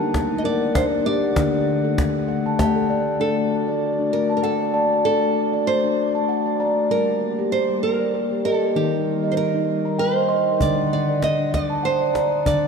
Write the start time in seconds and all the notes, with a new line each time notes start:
Already playing: A#3 G4 A#4 F#5 A5
0.00 D4
0.14 cajon bass, cajon slap
0.31 D#4
0.38 D#5
0.44 A#4 D5
0.62 D5, cajon slap
0.75 D4 C5 D5, cajon bass, cajon slap
0.92 D4
1.05 G4 D5, cajon slap
1.24 cajon slap
1.36 D3 A3 D4 A4, cajon bass, cajon slap
1.53 D5
1.84 A4
1.98 cajon bass, cajon slap
2.28 F#5
2.46 A5, cajon slap
2.59 A3 G4 A5, cajon bass, cajon slap
2.76 A4
2.90 D5
3.19 A3 D4 F#4 A4 D5
3.68 D5
3.99 D4
4.13 A#4
4.30 A5
4.37 A#4
4.43 A4 F#5
4.61 D5
4.74 D5 A5
5.04 D4 A4
5.53 D5
5.67 C5
5.84 D4
6.15 A5
6.29 F#5
6.46 D5
6.60 D5 A#5
6.90 G3 A#3 G4 A#4
7.39 G4
7.52 C5
7.69 G3
7.83 A#4
8.00 D5
8.14 A#4
8.32 G4
8.45 G4 A4 D#5
8.75 D#3 G3 D#4 G4 A#4
9.24 D#5
9.32 C5
9.37 A#4
9.55 D#4
9.85 A#5
9.98 C5 G5
10.16 D#5
10.29 D#5 C6
10.60 D3 D4 D5 F#5, cajon bass
10.93 D5
11.08 D5
11.22 D#5, cajon slap
11.39 D4
11.54 D5, cajon bass, cajon slap
11.70 A5
11.83 C5 F#5
12.01 D5, cajon slap
12.14 D5 A#5, cajon slap
12.33 cajon slap
12.45 D3 D4 D5, cajon bass